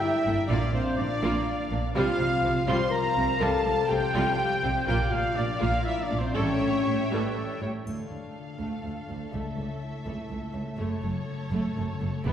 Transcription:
Already playing: G2 D3 A#3 G4 A4 A#4 D5 G5 A5
0.00 E4 E5 G5
0.15 A#4
0.24 G1 G2 A#3 A4
0.38 G4
0.48 A#1 A#2 A#3 D4 F4 D5 F5
0.63 F3
0.72 A#1 A#2 A#3 C4 F4 C5
0.87 F4
0.97 A#1 A#2 A#3 D4 A#4 D5
1.12 F4
1.22 A#1 A#2 A#3 F4 F5
1.35 A#5
1.48 F5
1.60 A#4
1.70 A#1 A#2 A#3 D4 F4
1.84 A#3
1.94 C2 C3 G3 F4 C5 F5
2.09 C4
2.18 C2 C3 F3 G3 F4
2.34 F4
2.43 C2 C3 G3 C4 G4
2.58 F4
2.67 C2 C3 G3 F4 C5 C6
2.82 G5
2.90 A#4 A#5
2.94 F5
3.06 F4
3.16 C2 C3 G3 C4
3.30 F4
3.40 C2 C3 G3 F4 A4 A5
3.64 C2 C3 F3 G3 F4
3.77 F4
3.88 C2 G3 C4 G4 G5
3.92 C3 G5
4.02 F4
4.14 C2 C3 G3 F4
4.39 F5
4.51 F4
4.63 C2 C3 G3 C4 G4
4.77 F4
4.87 A#1 A#2 A#3 F4 G4 D5 F5 G5
5.02 A#3
5.11 A#1 A#2 A#3 F4 F5
5.15 F3
5.27 D4
5.35 A#1 A#2 A#3 D4 A#4 D5
5.50 F4
5.59 A#1 A#2 A#3 F4 D5 F5
5.74 A#5
5.83 E4 D5 E5
5.98 F4
6.02 D4 D5
6.09 A#1 A#2 A#3 D4 A#4
6.18 C4 C5
6.24 D4
6.35 A1 A2 G3 C#4 A4 C#5 E5 G5
6.50 E3
6.60 A1 A2 G3 A3 A4
6.74 E4
6.85 A1 A2 G3 G4 C#5
7.00 A4
7.12 A1 A2 G3 A4 B4
7.25 G5
7.36 A4 E5
7.50 A4
7.61 A1 A2 G3 G4 C#5
7.75 E4
7.85 D2 D3 A3 A4 F5, triangle
8.06 D4
8.10 D2 A3
8.22 A3
8.38 F4
8.54 A4
8.59 D2 A3
8.70 F4
8.83 D2 A3
9.01 D4
9.09 D2 A3
9.18 A3
9.32 C#2 C#3 A3 E5
9.51 C#4
9.57 C#2 A3
9.68 A3
9.84 E4
10.00 A4
10.06 C#2 A3
10.16 E4
10.29 C#2 A3
10.47 C#4
10.54 C#2 A3
10.63 A3
10.77 F#1 F#2 A3 A4 C#5
10.97 C#3
11.03 F#1 F#2 A3
11.13 A3
11.29 C#4
11.44 A4
11.51 F#1 F#2 A3
11.61 C#4
11.76 F#1 F#2 A3
11.93 C#3
12.01 F#1 F#2 A3
12.09 A3
12.25 E1 E2 B3 G4 E5

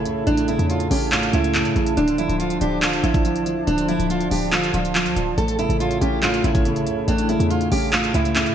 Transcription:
Already playing: A2 C#3 C#4 E4 A4 C#5 A5
0.06 C#2 C#3, closed hi-hat
0.16 A1
0.27 A1 A2 D4, closed hi-hat
0.37 closed hi-hat
0.48 C#3 E4, closed hi-hat
0.59 E2, closed hi-hat
0.69 F4, closed hi-hat
0.80 closed hi-hat
0.91 A1 C#4 G4, open hi-hat
1.12 A2 F4, clap, closed hi-hat
1.23 closed hi-hat
1.33 C#2 C#3 E4, closed hi-hat
1.44 closed hi-hat
1.54 C#3, clap, closed hi-hat
1.65 A2, closed hi-hat
1.76 A1 C#3, closed hi-hat
1.87 closed hi-hat
1.97 D1 D3 F3 D4 C5 D5, closed hi-hat
2.08 closed hi-hat
2.18 F3 E4, closed hi-hat
2.29 D1, closed hi-hat
2.40 F4, closed hi-hat
2.50 closed hi-hat
2.61 D1 D4 G4, closed hi-hat
2.82 D3 F4, clap, closed hi-hat
2.93 closed hi-hat
3.03 A1 F3 E4, closed hi-hat
3.14 kick, closed hi-hat
3.25 F3, closed hi-hat
3.36 closed hi-hat
3.46 F3, closed hi-hat
3.67 D1 D3 D4, closed hi-hat
3.78 closed hi-hat
3.88 F3 E4, closed hi-hat
3.99 D1, closed hi-hat
4.10 F4, closed hi-hat
4.21 closed hi-hat
4.31 D1 D4 G4, open hi-hat
4.52 D3 F4, clap, closed hi-hat
4.64 closed hi-hat
4.74 D1 F3 F4, closed hi-hat
4.85 closed hi-hat
4.95 F3, clap, closed hi-hat
5.06 D2, closed hi-hat
5.16 D1 F3, closed hi-hat
5.37 A1 A2 E4 A4 C#5, closed hi-hat
5.48 closed hi-hat
5.59 C#3 E4, closed hi-hat
5.69 A1, closed hi-hat
5.80 F4, closed hi-hat
5.91 closed hi-hat
6.01 A1 C#4 G4, closed hi-hat
6.23 A2 F4, clap, closed hi-hat
6.34 closed hi-hat
6.44 A1 C#3 E4, closed hi-hat
6.55 kick, closed hi-hat
6.65 C#3, closed hi-hat
6.76 closed hi-hat
6.87 C#2 C#3, closed hi-hat
6.97 A1
7.08 A1 A2 D4, closed hi-hat
7.18 closed hi-hat
7.29 C#3 E4, closed hi-hat
7.40 E2, closed hi-hat
7.50 F4, closed hi-hat
7.61 closed hi-hat
7.72 A1 C#4 G4, open hi-hat
7.92 A2 F4, clap, closed hi-hat
8.04 closed hi-hat
8.14 C#2 C#3 E4, closed hi-hat
8.25 closed hi-hat
8.35 C#3, clap, closed hi-hat
8.46 A2, closed hi-hat

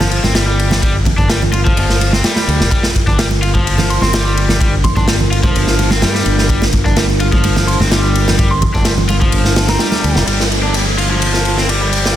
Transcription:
Already playing: G1 F3
0.00 snare, low conga
0.11 ride
0.24 G1 C4, snare, high conga
0.35 G3, snare, ride, muted conga
0.47 G3
0.59 ride
0.71 snare, muted conga, low conga
0.82 G3, kick, ride
1.05 kick, ride, high conga, low conga
1.18 G1 D4, kick, muted conga
1.29 G3, snare, ride
1.42 low conga
1.53 F4, ride, muted conga
1.65 F3, kick, high conga
1.77 G1, ride
1.90 snare
2.01 ride, muted conga
2.13 C4, snare, high conga
2.24 G3, snare, ride
2.36 G3, snare, muted conga
2.48 D2, ride
2.60 F1, snare
2.71 G3 D4 F4 A#4, kick, ride
2.83 snare
2.94 kick, ride, muted conga, high conga
3.07 G1 D4, kick
3.19 G3, snare, ride
3.31 muted conga
3.42 F4, ride
3.55 F3, kick, high conga
3.67 ride
3.78 snare, muted conga, low conga
3.90 C6, ride
4.01 G1 C4 C6, snare, high conga
4.13 G3, snare, ride, muted conga
4.26 G3
4.37 ride
4.49 snare, low conga
4.61 G3, kick, ride, muted conga
4.84 C6, kick, ride, high conga, low conga
4.96 G1 D4 C6, kick, muted conga
5.08 G3, snare, ride
5.20 low conga
5.31 F4, ride
5.43 F3, kick, muted conga, high conga
5.55 G1, ride
5.67 snare
5.79 ride, muted conga
5.91 C4, snare, high conga
6.02 G2 G3, snare, ride
6.15 G3, snare
6.25 G1, ride, muted conga
6.38 snare
6.49 G3, kick, ride
6.62 snare, muted conga
6.73 kick, ride, high conga
6.86 G1 D4, kick
6.96 G3, snare, ride
7.10 muted conga
7.20 F4, ride
7.32 F3, kick, high conga
7.44 ride, muted conga
7.56 snare, low conga
7.67 C6, ride
7.80 G1 C4, snare, high conga
7.91 G3, snare, ride, muted conga
8.03 G3
8.15 ride
8.28 snare, muted conga, low conga
8.38 G3, kick, ride
8.51 C6
8.62 C6, kick, ride, high conga, low conga
8.74 G1 D4, kick, muted conga
8.85 G3, snare, ride
8.98 low conga
9.09 F4, ride, muted conga
9.21 F3, kick, high conga
9.32 G1, ride
9.45 snare
9.56 snare, ride, muted conga
9.68 C4 A#5, snare, ride, high conga
9.79 G3, snare, ride
9.92 G3, snare, muted conga
10.04 D2, ride
10.16 F1, snare
10.27 G1 G3 D4 F4 A#4, ride, downlifter
10.40 snare
10.52 ride
10.63 D4
10.74 G3, ride
10.98 F4, ride
11.11 F3
11.22 ride
11.34 snare
11.45 ride
11.58 C4, snare
11.69 G3, ride
11.82 G3
11.93 ride
12.05 snare

